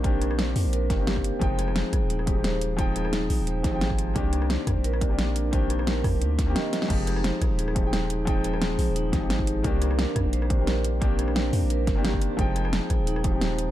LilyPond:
<<
  \new Staff \with { instrumentName = "Vibraphone" } { \time 4/4 \key f \minor \tempo 4 = 175 d'8 r8 c''8 r8 bes'8 r8 g'8 r8 | c''8 r8 aes'8 r8 ees'8 r8 c''8 r8 | aes'8 r8 ees'8 r8 c''8 r8 aes'8 r8 | d'8 r8 c''8 r8 bes'8 r8 d'8 r8 |
c''8 r8 bes'8 r8 d'8 r8 ees''8 r8 | ees'8 ees'8 c''8 r8 aes'8 r8 ees'8 ees'8 | c''8 r8 aes'8 r8 ees'8 r8 c''8 r8 | bes'8 r8 d'8 d'8 c''8 r8 bes'8 r8 |
d'8 d'8 r4 bes'8 r8 g'8 r8 | c''8 r8 aes'8 r8 ees'8 c''8 c''8 r8 | }
  \new Staff \with { instrumentName = "Grand piano" } { \time 4/4 \key f \minor <ees bes c' d' g'>2~ <ees bes c' d' g'>8 <ees bes c' d' g'>16 <ees bes c' d' g'>4~ <ees bes c' d' g'>16 | <f aes c' ees' g''>2~ <f aes c' ees' g''>8 <f aes c' ees' g'>16 <f aes c' ees' g'>4~ <f aes c' ees' g'>16 | <f aes c' ees' g''>2~ <f aes c' ees' g''>8 <f aes c' ees' g'>16 <f aes c' ees' g''>4~ <f aes c' ees' g''>16 | <ees bes c' d' g'>2~ <ees bes c' d' g'>8 <ees bes c' d' g'>16 <ees bes c' d' g'>4~ <ees bes c' d' g'>16 |
<ees bes c' d' g'>2~ <ees bes c' d' g'>8 r16 <ees bes c' g'>4~ <ees bes c' g'>16 | <f aes c' ees' g'>2~ <f aes c' ees' g'>8 <f aes c' ees' g'>16 <f aes c' ees' g''>4~ <f aes c' ees' g''>16 | <f aes c' ees' g''>2~ <f aes c' ees' g''>8 <f aes c' ees' g'>16 <f aes c' ees' g'>4~ <f aes c' ees' g'>16 | <ees bes c' d' g'>2~ <ees bes c' d' g'>8 <ees bes c' d' g'>16 <ees bes c' d' g'>4~ <ees bes c' d' g'>16 |
<ees bes c' d' g'>2~ <ees bes c' d' g'>8 r16 <ees bes c' d' g'>4~ <ees bes c' d' g'>16 | <f aes c' ees' g''>2~ <f aes c' ees' g''>8 <f aes c' ees' g'>16 <f aes c' ees' g'>4~ <f aes c' ees' g'>16 | }
  \new Staff \with { instrumentName = "808-style bass" } { \clef bass \time 4/4 \key f \minor bes,,4. f,16 bes,,8. g,,4~ g,,16 r16 | f,,4~ f,,16 r16 bes,,16 ees,,2~ ees,,16~ | ees,,4. bes,,16 ees,,8. aes,,4. | c,4~ c,16 r16 f,16 bes,,2~ bes,,16~ |
bes,,4. f,16 bes,,16 d,4 r4 | f,,4~ f,,16 r16 bes,,16 ees,,2~ ees,,16~ | ees,,4. bes,,16 ees,,8. aes,,4. | c,4~ c,16 r16 f,16 bes,,2~ bes,,16~ |
bes,,4. f,16 bes,,8. g,,4~ g,,16 r16 | f,,4~ f,,16 r16 bes,,16 ees,,2~ ees,,16 | }
  \new DrumStaff \with { instrumentName = "Drums" } \drummode { \time 4/4 <hh bd>8 <hh ss>16 ss16 <hh sn>8 hho8 hh8 <hh bd sn>8 <hh sn>16 bd16 hh8 | <hh bd>8 <hh ss>16 ss16 <hh sn>8 <hh bd ss>8 hh16 ss16 <hh bd>8 <hh sn>8 hh8 | <hh bd>8 <hh ss>16 ss16 <hh sn>8 hho8 hh8 <hh bd sn>8 <hh sn>16 bd16 hh8 | <hh bd>8 <hh ss>16 ss16 <hh sn>8 <hh bd ss>8 hh16 ss16 <hh bd>8 <hh sn>8 hh8 |
<hh bd>8 <hh ss>16 ss16 <hh sn>8 <hho bd ss>8 hh8 <hh bd sn>8 <hh sn>8 <hh sn>16 sn16 | <cymc hh bd>8 <hh ss>16 ss16 <hh sn>8 <hh bd ss>8 hh16 ss16 <hh bd>8 <hh sn>8 hh8 | <hh bd>8 <hh ss>16 ss16 <hh sn>8 hho8 hh8 <hh bd sn>8 <hh sn>16 bd16 hh8 | <hh bd>8 <hh ss>16 ss16 <hh sn>8 <hh bd ss>8 hh16 ss16 <hh bd>8 <hh sn>8 hh8 |
<hh bd>8 <hh ss>16 ss16 <hh sn>8 hho8 hh8 <hh bd sn>8 <hh sn>16 bd16 hh8 | <hh bd>8 <hh ss>16 ss16 <hh sn>8 <hh bd ss>8 hh16 ss16 <hh bd>8 <hh sn>8 hh8 | }
>>